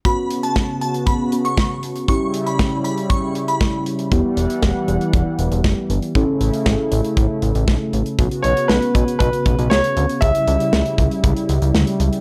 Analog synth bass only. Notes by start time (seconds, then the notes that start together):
4.12 E1
4.37 E1
4.63 E1
4.88 E1
5.13 E1
5.39 E1
5.52 E1
5.64 F#1
5.90 G1
6.15 A1
6.41 A1
6.66 A1
6.92 A1
7.17 A1
7.42 A1
7.55 A1
7.68 B1
7.93 A1
8.19 B1
8.44 B1
8.70 B1
8.95 B1
9.20 B1
9.46 B1
9.59 B1
9.71 C#2
9.97 D2
10.22 C#2
10.48 C#2
10.73 C#2
10.98 C#2
11.24 C#2
11.49 C#2
11.62 C#2
11.75 D2
12.00 C#2